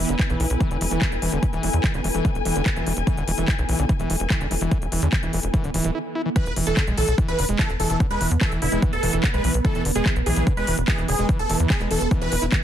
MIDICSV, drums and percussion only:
0, 0, Header, 1, 2, 480
1, 0, Start_track
1, 0, Key_signature, 4, "major"
1, 0, Tempo, 410959
1, 1667, Time_signature, 4, 2, 24, 8
1, 14758, End_track
2, 0, Start_track
2, 0, Title_t, "Drums"
2, 107, Note_on_c, 9, 42, 51
2, 224, Note_off_c, 9, 42, 0
2, 227, Note_on_c, 9, 36, 120
2, 227, Note_on_c, 9, 39, 108
2, 227, Note_on_c, 9, 42, 45
2, 344, Note_off_c, 9, 36, 0
2, 344, Note_off_c, 9, 39, 0
2, 344, Note_off_c, 9, 42, 0
2, 347, Note_on_c, 9, 42, 24
2, 464, Note_off_c, 9, 42, 0
2, 467, Note_on_c, 9, 46, 90
2, 583, Note_off_c, 9, 46, 0
2, 587, Note_on_c, 9, 42, 50
2, 703, Note_off_c, 9, 42, 0
2, 707, Note_on_c, 9, 36, 112
2, 707, Note_on_c, 9, 42, 50
2, 823, Note_off_c, 9, 36, 0
2, 824, Note_off_c, 9, 42, 0
2, 827, Note_on_c, 9, 42, 24
2, 944, Note_off_c, 9, 42, 0
2, 947, Note_on_c, 9, 46, 105
2, 1063, Note_off_c, 9, 46, 0
2, 1066, Note_on_c, 9, 42, 51
2, 1183, Note_off_c, 9, 42, 0
2, 1187, Note_on_c, 9, 36, 118
2, 1187, Note_on_c, 9, 39, 115
2, 1187, Note_on_c, 9, 42, 51
2, 1303, Note_off_c, 9, 36, 0
2, 1304, Note_off_c, 9, 39, 0
2, 1304, Note_off_c, 9, 42, 0
2, 1307, Note_on_c, 9, 42, 26
2, 1424, Note_off_c, 9, 42, 0
2, 1427, Note_on_c, 9, 46, 100
2, 1544, Note_off_c, 9, 46, 0
2, 1547, Note_on_c, 9, 42, 51
2, 1663, Note_off_c, 9, 42, 0
2, 1667, Note_on_c, 9, 36, 115
2, 1667, Note_on_c, 9, 42, 51
2, 1783, Note_off_c, 9, 36, 0
2, 1783, Note_off_c, 9, 42, 0
2, 1786, Note_on_c, 9, 42, 25
2, 1903, Note_off_c, 9, 42, 0
2, 1906, Note_on_c, 9, 46, 105
2, 2023, Note_off_c, 9, 46, 0
2, 2026, Note_on_c, 9, 42, 54
2, 2143, Note_off_c, 9, 42, 0
2, 2146, Note_on_c, 9, 36, 119
2, 2146, Note_on_c, 9, 39, 107
2, 2146, Note_on_c, 9, 42, 49
2, 2263, Note_off_c, 9, 36, 0
2, 2263, Note_off_c, 9, 39, 0
2, 2263, Note_off_c, 9, 42, 0
2, 2267, Note_on_c, 9, 42, 25
2, 2383, Note_off_c, 9, 42, 0
2, 2386, Note_on_c, 9, 46, 91
2, 2503, Note_off_c, 9, 46, 0
2, 2506, Note_on_c, 9, 42, 54
2, 2623, Note_off_c, 9, 42, 0
2, 2626, Note_on_c, 9, 36, 119
2, 2626, Note_on_c, 9, 42, 51
2, 2743, Note_off_c, 9, 36, 0
2, 2743, Note_off_c, 9, 42, 0
2, 2746, Note_on_c, 9, 42, 26
2, 2863, Note_off_c, 9, 42, 0
2, 2866, Note_on_c, 9, 46, 106
2, 2983, Note_off_c, 9, 46, 0
2, 2986, Note_on_c, 9, 42, 54
2, 3103, Note_off_c, 9, 42, 0
2, 3106, Note_on_c, 9, 36, 122
2, 3107, Note_on_c, 9, 39, 115
2, 3107, Note_on_c, 9, 42, 54
2, 3223, Note_off_c, 9, 36, 0
2, 3223, Note_off_c, 9, 39, 0
2, 3223, Note_off_c, 9, 42, 0
2, 3226, Note_on_c, 9, 42, 26
2, 3343, Note_off_c, 9, 42, 0
2, 3346, Note_on_c, 9, 46, 94
2, 3463, Note_off_c, 9, 46, 0
2, 3467, Note_on_c, 9, 42, 55
2, 3583, Note_off_c, 9, 42, 0
2, 3586, Note_on_c, 9, 36, 112
2, 3587, Note_on_c, 9, 42, 54
2, 3703, Note_off_c, 9, 36, 0
2, 3703, Note_off_c, 9, 42, 0
2, 3707, Note_on_c, 9, 42, 28
2, 3823, Note_off_c, 9, 42, 0
2, 3826, Note_on_c, 9, 46, 105
2, 3943, Note_off_c, 9, 46, 0
2, 3946, Note_on_c, 9, 42, 52
2, 4063, Note_off_c, 9, 42, 0
2, 4067, Note_on_c, 9, 36, 113
2, 4067, Note_on_c, 9, 39, 115
2, 4067, Note_on_c, 9, 42, 53
2, 4183, Note_off_c, 9, 36, 0
2, 4183, Note_off_c, 9, 39, 0
2, 4183, Note_off_c, 9, 42, 0
2, 4187, Note_on_c, 9, 42, 26
2, 4303, Note_off_c, 9, 42, 0
2, 4306, Note_on_c, 9, 46, 88
2, 4423, Note_off_c, 9, 46, 0
2, 4427, Note_on_c, 9, 42, 55
2, 4543, Note_off_c, 9, 42, 0
2, 4546, Note_on_c, 9, 42, 52
2, 4547, Note_on_c, 9, 36, 117
2, 4663, Note_off_c, 9, 36, 0
2, 4663, Note_off_c, 9, 42, 0
2, 4667, Note_on_c, 9, 42, 27
2, 4783, Note_off_c, 9, 42, 0
2, 4786, Note_on_c, 9, 46, 101
2, 4903, Note_off_c, 9, 46, 0
2, 4907, Note_on_c, 9, 42, 59
2, 5023, Note_off_c, 9, 42, 0
2, 5027, Note_on_c, 9, 36, 119
2, 5027, Note_on_c, 9, 39, 117
2, 5027, Note_on_c, 9, 42, 56
2, 5143, Note_off_c, 9, 39, 0
2, 5143, Note_off_c, 9, 42, 0
2, 5144, Note_off_c, 9, 36, 0
2, 5147, Note_on_c, 9, 42, 27
2, 5263, Note_off_c, 9, 42, 0
2, 5267, Note_on_c, 9, 46, 96
2, 5384, Note_off_c, 9, 46, 0
2, 5387, Note_on_c, 9, 42, 56
2, 5503, Note_off_c, 9, 42, 0
2, 5507, Note_on_c, 9, 36, 114
2, 5507, Note_on_c, 9, 42, 55
2, 5624, Note_off_c, 9, 36, 0
2, 5624, Note_off_c, 9, 42, 0
2, 5627, Note_on_c, 9, 42, 29
2, 5744, Note_off_c, 9, 42, 0
2, 5747, Note_on_c, 9, 46, 107
2, 5864, Note_off_c, 9, 46, 0
2, 5867, Note_on_c, 9, 42, 59
2, 5984, Note_off_c, 9, 42, 0
2, 5987, Note_on_c, 9, 36, 120
2, 5987, Note_on_c, 9, 39, 121
2, 5987, Note_on_c, 9, 42, 54
2, 6104, Note_off_c, 9, 36, 0
2, 6104, Note_off_c, 9, 39, 0
2, 6104, Note_off_c, 9, 42, 0
2, 6107, Note_on_c, 9, 42, 29
2, 6224, Note_off_c, 9, 42, 0
2, 6227, Note_on_c, 9, 46, 90
2, 6344, Note_off_c, 9, 46, 0
2, 6347, Note_on_c, 9, 42, 56
2, 6464, Note_off_c, 9, 42, 0
2, 6467, Note_on_c, 9, 36, 114
2, 6467, Note_on_c, 9, 42, 53
2, 6584, Note_off_c, 9, 36, 0
2, 6584, Note_off_c, 9, 42, 0
2, 6587, Note_on_c, 9, 42, 29
2, 6704, Note_off_c, 9, 42, 0
2, 6707, Note_on_c, 9, 46, 105
2, 6824, Note_off_c, 9, 46, 0
2, 6827, Note_on_c, 9, 42, 56
2, 6944, Note_off_c, 9, 42, 0
2, 7427, Note_on_c, 9, 36, 123
2, 7427, Note_on_c, 9, 42, 52
2, 7544, Note_off_c, 9, 36, 0
2, 7544, Note_off_c, 9, 42, 0
2, 7547, Note_on_c, 9, 42, 28
2, 7664, Note_off_c, 9, 42, 0
2, 7667, Note_on_c, 9, 46, 108
2, 7784, Note_off_c, 9, 46, 0
2, 7787, Note_on_c, 9, 42, 56
2, 7904, Note_off_c, 9, 42, 0
2, 7907, Note_on_c, 9, 36, 125
2, 7907, Note_on_c, 9, 39, 124
2, 7907, Note_on_c, 9, 42, 56
2, 8024, Note_off_c, 9, 36, 0
2, 8024, Note_off_c, 9, 39, 0
2, 8024, Note_off_c, 9, 42, 0
2, 8027, Note_on_c, 9, 42, 29
2, 8144, Note_off_c, 9, 42, 0
2, 8147, Note_on_c, 9, 46, 94
2, 8263, Note_off_c, 9, 46, 0
2, 8267, Note_on_c, 9, 42, 58
2, 8384, Note_off_c, 9, 42, 0
2, 8387, Note_on_c, 9, 36, 122
2, 8387, Note_on_c, 9, 42, 53
2, 8504, Note_off_c, 9, 36, 0
2, 8504, Note_off_c, 9, 42, 0
2, 8507, Note_on_c, 9, 42, 28
2, 8624, Note_off_c, 9, 42, 0
2, 8627, Note_on_c, 9, 46, 110
2, 8744, Note_off_c, 9, 46, 0
2, 8747, Note_on_c, 9, 42, 58
2, 8864, Note_off_c, 9, 42, 0
2, 8867, Note_on_c, 9, 36, 117
2, 8867, Note_on_c, 9, 39, 125
2, 8867, Note_on_c, 9, 42, 58
2, 8984, Note_off_c, 9, 36, 0
2, 8984, Note_off_c, 9, 39, 0
2, 8984, Note_off_c, 9, 42, 0
2, 8987, Note_on_c, 9, 42, 27
2, 9104, Note_off_c, 9, 42, 0
2, 9107, Note_on_c, 9, 46, 98
2, 9224, Note_off_c, 9, 46, 0
2, 9227, Note_on_c, 9, 42, 59
2, 9344, Note_off_c, 9, 42, 0
2, 9347, Note_on_c, 9, 36, 127
2, 9347, Note_on_c, 9, 42, 55
2, 9463, Note_off_c, 9, 42, 0
2, 9464, Note_off_c, 9, 36, 0
2, 9467, Note_on_c, 9, 42, 27
2, 9583, Note_off_c, 9, 42, 0
2, 9586, Note_on_c, 9, 46, 114
2, 9703, Note_off_c, 9, 46, 0
2, 9707, Note_on_c, 9, 42, 56
2, 9823, Note_off_c, 9, 42, 0
2, 9827, Note_on_c, 9, 36, 123
2, 9827, Note_on_c, 9, 39, 119
2, 9827, Note_on_c, 9, 42, 52
2, 9943, Note_off_c, 9, 39, 0
2, 9943, Note_off_c, 9, 42, 0
2, 9944, Note_off_c, 9, 36, 0
2, 9947, Note_on_c, 9, 42, 27
2, 10063, Note_off_c, 9, 42, 0
2, 10067, Note_on_c, 9, 46, 98
2, 10183, Note_off_c, 9, 46, 0
2, 10187, Note_on_c, 9, 42, 57
2, 10304, Note_off_c, 9, 42, 0
2, 10307, Note_on_c, 9, 36, 120
2, 10307, Note_on_c, 9, 42, 56
2, 10424, Note_off_c, 9, 36, 0
2, 10424, Note_off_c, 9, 42, 0
2, 10427, Note_on_c, 9, 42, 26
2, 10544, Note_off_c, 9, 42, 0
2, 10547, Note_on_c, 9, 46, 113
2, 10664, Note_off_c, 9, 46, 0
2, 10667, Note_on_c, 9, 42, 57
2, 10784, Note_off_c, 9, 42, 0
2, 10787, Note_on_c, 9, 36, 125
2, 10787, Note_on_c, 9, 39, 127
2, 10787, Note_on_c, 9, 42, 57
2, 10904, Note_off_c, 9, 36, 0
2, 10904, Note_off_c, 9, 39, 0
2, 10904, Note_off_c, 9, 42, 0
2, 10907, Note_on_c, 9, 42, 28
2, 11024, Note_off_c, 9, 42, 0
2, 11027, Note_on_c, 9, 46, 105
2, 11144, Note_off_c, 9, 46, 0
2, 11147, Note_on_c, 9, 42, 59
2, 11264, Note_off_c, 9, 42, 0
2, 11267, Note_on_c, 9, 36, 127
2, 11267, Note_on_c, 9, 42, 51
2, 11384, Note_off_c, 9, 36, 0
2, 11384, Note_off_c, 9, 42, 0
2, 11387, Note_on_c, 9, 42, 25
2, 11504, Note_off_c, 9, 42, 0
2, 11507, Note_on_c, 9, 46, 113
2, 11623, Note_off_c, 9, 46, 0
2, 11627, Note_on_c, 9, 42, 52
2, 11743, Note_off_c, 9, 42, 0
2, 11746, Note_on_c, 9, 39, 115
2, 11746, Note_on_c, 9, 42, 50
2, 11747, Note_on_c, 9, 36, 121
2, 11863, Note_off_c, 9, 39, 0
2, 11863, Note_off_c, 9, 42, 0
2, 11864, Note_off_c, 9, 36, 0
2, 11867, Note_on_c, 9, 42, 26
2, 11983, Note_off_c, 9, 42, 0
2, 11986, Note_on_c, 9, 46, 95
2, 12103, Note_off_c, 9, 46, 0
2, 12106, Note_on_c, 9, 42, 53
2, 12223, Note_off_c, 9, 42, 0
2, 12227, Note_on_c, 9, 36, 127
2, 12227, Note_on_c, 9, 42, 52
2, 12344, Note_off_c, 9, 36, 0
2, 12344, Note_off_c, 9, 42, 0
2, 12347, Note_on_c, 9, 42, 26
2, 12464, Note_off_c, 9, 42, 0
2, 12466, Note_on_c, 9, 46, 112
2, 12583, Note_off_c, 9, 46, 0
2, 12587, Note_on_c, 9, 42, 56
2, 12704, Note_off_c, 9, 42, 0
2, 12707, Note_on_c, 9, 36, 127
2, 12707, Note_on_c, 9, 39, 122
2, 12707, Note_on_c, 9, 42, 53
2, 12823, Note_off_c, 9, 39, 0
2, 12823, Note_off_c, 9, 42, 0
2, 12824, Note_off_c, 9, 36, 0
2, 12827, Note_on_c, 9, 42, 26
2, 12943, Note_off_c, 9, 42, 0
2, 12946, Note_on_c, 9, 46, 105
2, 13063, Note_off_c, 9, 46, 0
2, 13067, Note_on_c, 9, 42, 53
2, 13184, Note_off_c, 9, 42, 0
2, 13187, Note_on_c, 9, 36, 127
2, 13187, Note_on_c, 9, 42, 48
2, 13304, Note_off_c, 9, 36, 0
2, 13304, Note_off_c, 9, 42, 0
2, 13307, Note_on_c, 9, 42, 26
2, 13423, Note_off_c, 9, 42, 0
2, 13426, Note_on_c, 9, 46, 115
2, 13543, Note_off_c, 9, 46, 0
2, 13547, Note_on_c, 9, 42, 52
2, 13663, Note_off_c, 9, 42, 0
2, 13667, Note_on_c, 9, 36, 127
2, 13667, Note_on_c, 9, 39, 117
2, 13667, Note_on_c, 9, 42, 51
2, 13783, Note_off_c, 9, 39, 0
2, 13783, Note_off_c, 9, 42, 0
2, 13784, Note_off_c, 9, 36, 0
2, 13787, Note_on_c, 9, 42, 25
2, 13904, Note_off_c, 9, 42, 0
2, 13907, Note_on_c, 9, 46, 92
2, 14023, Note_off_c, 9, 46, 0
2, 14027, Note_on_c, 9, 42, 53
2, 14144, Note_off_c, 9, 42, 0
2, 14147, Note_on_c, 9, 36, 124
2, 14147, Note_on_c, 9, 42, 51
2, 14264, Note_off_c, 9, 36, 0
2, 14264, Note_off_c, 9, 42, 0
2, 14267, Note_on_c, 9, 42, 25
2, 14384, Note_off_c, 9, 42, 0
2, 14387, Note_on_c, 9, 46, 116
2, 14503, Note_off_c, 9, 46, 0
2, 14507, Note_on_c, 9, 42, 54
2, 14624, Note_off_c, 9, 42, 0
2, 14627, Note_on_c, 9, 36, 124
2, 14627, Note_on_c, 9, 39, 124
2, 14627, Note_on_c, 9, 42, 50
2, 14744, Note_off_c, 9, 36, 0
2, 14744, Note_off_c, 9, 39, 0
2, 14744, Note_off_c, 9, 42, 0
2, 14758, End_track
0, 0, End_of_file